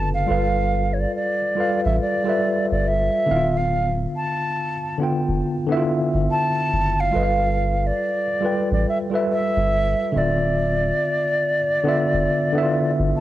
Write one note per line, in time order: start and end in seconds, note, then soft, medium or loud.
0.00 0.25 F#1 medium
0.00 0.31 D3 medium
0.00 0.31 B3 medium
0.00 0.28 F4 medium
0.00 0.29 A4 medium
0.00 0.30 B4 medium
0.14 0.95 F5 medium
0.27 1.06 G1 loud
0.27 1.40 G3 medium
0.27 1.41 F4 medium
0.27 1.41 A4 medium
0.31 1.42 B4 medium
0.31 1.43 F5 medium
0.93 1.01 C#5 medium
0.99 1.15 D5 medium
1.15 1.81 D5 medium
1.55 2.13 G3 medium
1.55 2.13 F4 medium
1.55 2.14 A4 medium
1.55 2.15 B4 medium
1.60 2.15 F5 medium
1.85 1.99 A1 medium
1.85 2.00 E5 medium
2.01 2.66 D5 medium
2.24 3.27 G3 medium
2.24 3.28 F4 medium
2.24 3.29 A4 medium
2.28 3.30 B4 medium
2.28 3.30 E5 medium
2.71 3.09 G1 medium
2.71 2.89 D5 medium
2.88 3.59 E5 medium
3.26 4.06 D1 loud
3.26 4.74 D3 medium
3.26 4.75 B3 medium
3.26 3.37 E4 soft
3.31 4.77 F5 medium
3.36 4.79 F4 medium
3.57 3.92 F5 medium
4.16 4.97 A5 loud
4.98 5.55 D3 medium
4.98 5.56 B3 medium
4.98 5.57 F4 medium
5.03 5.58 G5 medium
5.28 5.42 F1 medium
5.67 6.93 D3 medium
5.67 6.94 B3 medium
5.67 5.75 E4 medium
5.72 6.95 E5 medium
5.77 6.98 F4 medium
6.14 6.28 G1 medium
6.31 7.02 A5 loud
6.73 7.10 F#1 loud
7.00 7.88 F5 medium
7.12 8.26 G3 medium
7.12 8.26 F4 medium
7.12 8.27 A4 medium
7.16 7.91 G1 loud
7.16 8.28 B4 medium
7.16 7.24 D#5 medium
7.24 8.32 F5 medium
7.87 8.71 D5 medium
8.40 8.98 G3 medium
8.40 8.99 F4 medium
8.40 8.99 A4 medium
8.40 9.00 B4 medium
8.46 9.01 G5 medium
8.71 8.85 A1 medium
8.71 8.86 D5 medium
8.89 8.98 E5 medium
9.10 10.13 G3 medium
9.10 10.14 F4 medium
9.10 10.14 A4 medium
9.14 10.15 B4 medium
9.14 10.16 E5 medium
9.32 10.19 E5 loud
9.56 9.94 G1 medium
10.12 10.91 D1 loud
10.12 11.60 D3 medium
10.12 11.61 B3 medium
10.12 11.62 F4 medium
10.17 12.91 D5 medium
10.17 11.63 E5 medium
11.83 12.41 D3 medium
11.83 12.42 B3 medium
11.83 12.43 F4 medium
11.89 12.44 E5 medium
12.13 12.27 F1 medium
12.53 13.20 D3 medium
12.53 13.20 B3 medium
12.53 12.61 E4 medium
12.58 13.20 E5 medium
12.63 13.20 F4 medium
12.99 13.13 G1 medium
13.17 13.20 A5 loud